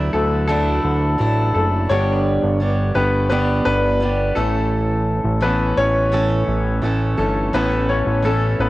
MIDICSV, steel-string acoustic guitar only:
0, 0, Header, 1, 2, 480
1, 0, Start_track
1, 0, Tempo, 705053
1, 1289, Time_signature, 4, 2, 24, 8
1, 5919, End_track
2, 0, Start_track
2, 0, Title_t, "Steel-string acoustic guitar"
2, 0, Program_c, 0, 25
2, 0, Note_on_c, 0, 54, 54
2, 0, Note_on_c, 0, 57, 61
2, 0, Note_on_c, 0, 62, 60
2, 0, Note_on_c, 0, 64, 71
2, 324, Note_off_c, 0, 54, 0
2, 325, Note_off_c, 0, 57, 0
2, 328, Note_on_c, 0, 50, 65
2, 332, Note_on_c, 0, 54, 72
2, 333, Note_off_c, 0, 64, 0
2, 333, Note_on_c, 0, 57, 81
2, 334, Note_off_c, 0, 62, 0
2, 336, Note_on_c, 0, 62, 79
2, 341, Note_on_c, 0, 64, 81
2, 794, Note_off_c, 0, 54, 0
2, 800, Note_off_c, 0, 57, 0
2, 802, Note_on_c, 0, 54, 59
2, 808, Note_on_c, 0, 57, 56
2, 815, Note_off_c, 0, 62, 0
2, 815, Note_off_c, 0, 64, 0
2, 818, Note_on_c, 0, 62, 51
2, 822, Note_on_c, 0, 64, 72
2, 843, Note_off_c, 0, 50, 0
2, 1285, Note_off_c, 0, 54, 0
2, 1289, Note_off_c, 0, 57, 0
2, 1289, Note_on_c, 0, 43, 81
2, 1293, Note_on_c, 0, 50, 73
2, 1295, Note_on_c, 0, 55, 78
2, 1296, Note_off_c, 0, 64, 0
2, 1297, Note_on_c, 0, 59, 69
2, 1298, Note_off_c, 0, 62, 0
2, 1301, Note_on_c, 0, 62, 82
2, 1303, Note_on_c, 0, 67, 79
2, 1761, Note_off_c, 0, 55, 0
2, 1769, Note_off_c, 0, 43, 0
2, 1769, Note_on_c, 0, 55, 63
2, 1770, Note_off_c, 0, 59, 0
2, 1771, Note_off_c, 0, 50, 0
2, 1775, Note_off_c, 0, 62, 0
2, 1776, Note_off_c, 0, 67, 0
2, 1778, Note_on_c, 0, 59, 57
2, 1783, Note_on_c, 0, 62, 55
2, 1789, Note_on_c, 0, 67, 59
2, 1996, Note_off_c, 0, 67, 0
2, 2005, Note_on_c, 0, 67, 43
2, 2006, Note_off_c, 0, 62, 0
2, 2009, Note_off_c, 0, 55, 0
2, 2011, Note_off_c, 0, 59, 0
2, 2015, Note_on_c, 0, 62, 42
2, 2019, Note_on_c, 0, 59, 46
2, 2025, Note_on_c, 0, 55, 33
2, 2245, Note_off_c, 0, 55, 0
2, 2245, Note_on_c, 0, 43, 71
2, 2247, Note_off_c, 0, 67, 0
2, 2249, Note_off_c, 0, 59, 0
2, 2249, Note_off_c, 0, 62, 0
2, 2250, Note_on_c, 0, 50, 73
2, 2253, Note_on_c, 0, 55, 67
2, 2257, Note_on_c, 0, 62, 76
2, 2258, Note_on_c, 0, 59, 81
2, 2261, Note_on_c, 0, 67, 76
2, 2718, Note_off_c, 0, 55, 0
2, 2726, Note_on_c, 0, 55, 60
2, 2727, Note_off_c, 0, 43, 0
2, 2728, Note_off_c, 0, 59, 0
2, 2730, Note_off_c, 0, 50, 0
2, 2733, Note_off_c, 0, 62, 0
2, 2735, Note_off_c, 0, 67, 0
2, 2736, Note_on_c, 0, 59, 56
2, 2743, Note_on_c, 0, 62, 63
2, 2748, Note_on_c, 0, 67, 62
2, 2964, Note_off_c, 0, 67, 0
2, 2967, Note_on_c, 0, 69, 67
2, 2968, Note_off_c, 0, 55, 0
2, 2969, Note_off_c, 0, 62, 0
2, 2972, Note_off_c, 0, 59, 0
2, 2972, Note_on_c, 0, 61, 57
2, 2975, Note_on_c, 0, 57, 57
2, 2981, Note_on_c, 0, 52, 52
2, 2984, Note_on_c, 0, 45, 54
2, 3678, Note_off_c, 0, 52, 0
2, 3680, Note_on_c, 0, 52, 62
2, 3687, Note_off_c, 0, 57, 0
2, 3689, Note_off_c, 0, 61, 0
2, 3690, Note_on_c, 0, 57, 60
2, 3697, Note_off_c, 0, 45, 0
2, 3697, Note_on_c, 0, 61, 63
2, 3700, Note_off_c, 0, 69, 0
2, 3703, Note_on_c, 0, 69, 60
2, 4165, Note_on_c, 0, 45, 75
2, 4167, Note_off_c, 0, 52, 0
2, 4169, Note_off_c, 0, 61, 0
2, 4170, Note_on_c, 0, 52, 76
2, 4171, Note_off_c, 0, 57, 0
2, 4174, Note_on_c, 0, 57, 77
2, 4176, Note_off_c, 0, 69, 0
2, 4177, Note_on_c, 0, 61, 74
2, 4179, Note_on_c, 0, 69, 87
2, 4639, Note_off_c, 0, 52, 0
2, 4641, Note_on_c, 0, 52, 55
2, 4648, Note_off_c, 0, 45, 0
2, 4648, Note_off_c, 0, 57, 0
2, 4650, Note_off_c, 0, 61, 0
2, 4651, Note_on_c, 0, 57, 59
2, 4658, Note_on_c, 0, 61, 59
2, 4662, Note_off_c, 0, 69, 0
2, 4664, Note_on_c, 0, 69, 55
2, 4876, Note_off_c, 0, 69, 0
2, 4884, Note_on_c, 0, 69, 49
2, 4886, Note_off_c, 0, 52, 0
2, 4889, Note_off_c, 0, 61, 0
2, 4891, Note_off_c, 0, 57, 0
2, 4897, Note_on_c, 0, 61, 47
2, 4907, Note_on_c, 0, 57, 39
2, 5127, Note_off_c, 0, 57, 0
2, 5127, Note_off_c, 0, 69, 0
2, 5127, Note_on_c, 0, 45, 82
2, 5130, Note_off_c, 0, 61, 0
2, 5131, Note_on_c, 0, 52, 81
2, 5135, Note_on_c, 0, 57, 85
2, 5138, Note_on_c, 0, 61, 80
2, 5141, Note_on_c, 0, 69, 84
2, 5597, Note_off_c, 0, 52, 0
2, 5600, Note_on_c, 0, 52, 63
2, 5607, Note_off_c, 0, 57, 0
2, 5609, Note_off_c, 0, 45, 0
2, 5609, Note_off_c, 0, 61, 0
2, 5610, Note_on_c, 0, 57, 64
2, 5617, Note_on_c, 0, 61, 64
2, 5618, Note_off_c, 0, 69, 0
2, 5620, Note_on_c, 0, 69, 65
2, 5919, Note_off_c, 0, 52, 0
2, 5919, Note_off_c, 0, 57, 0
2, 5919, Note_off_c, 0, 61, 0
2, 5919, Note_off_c, 0, 69, 0
2, 5919, End_track
0, 0, End_of_file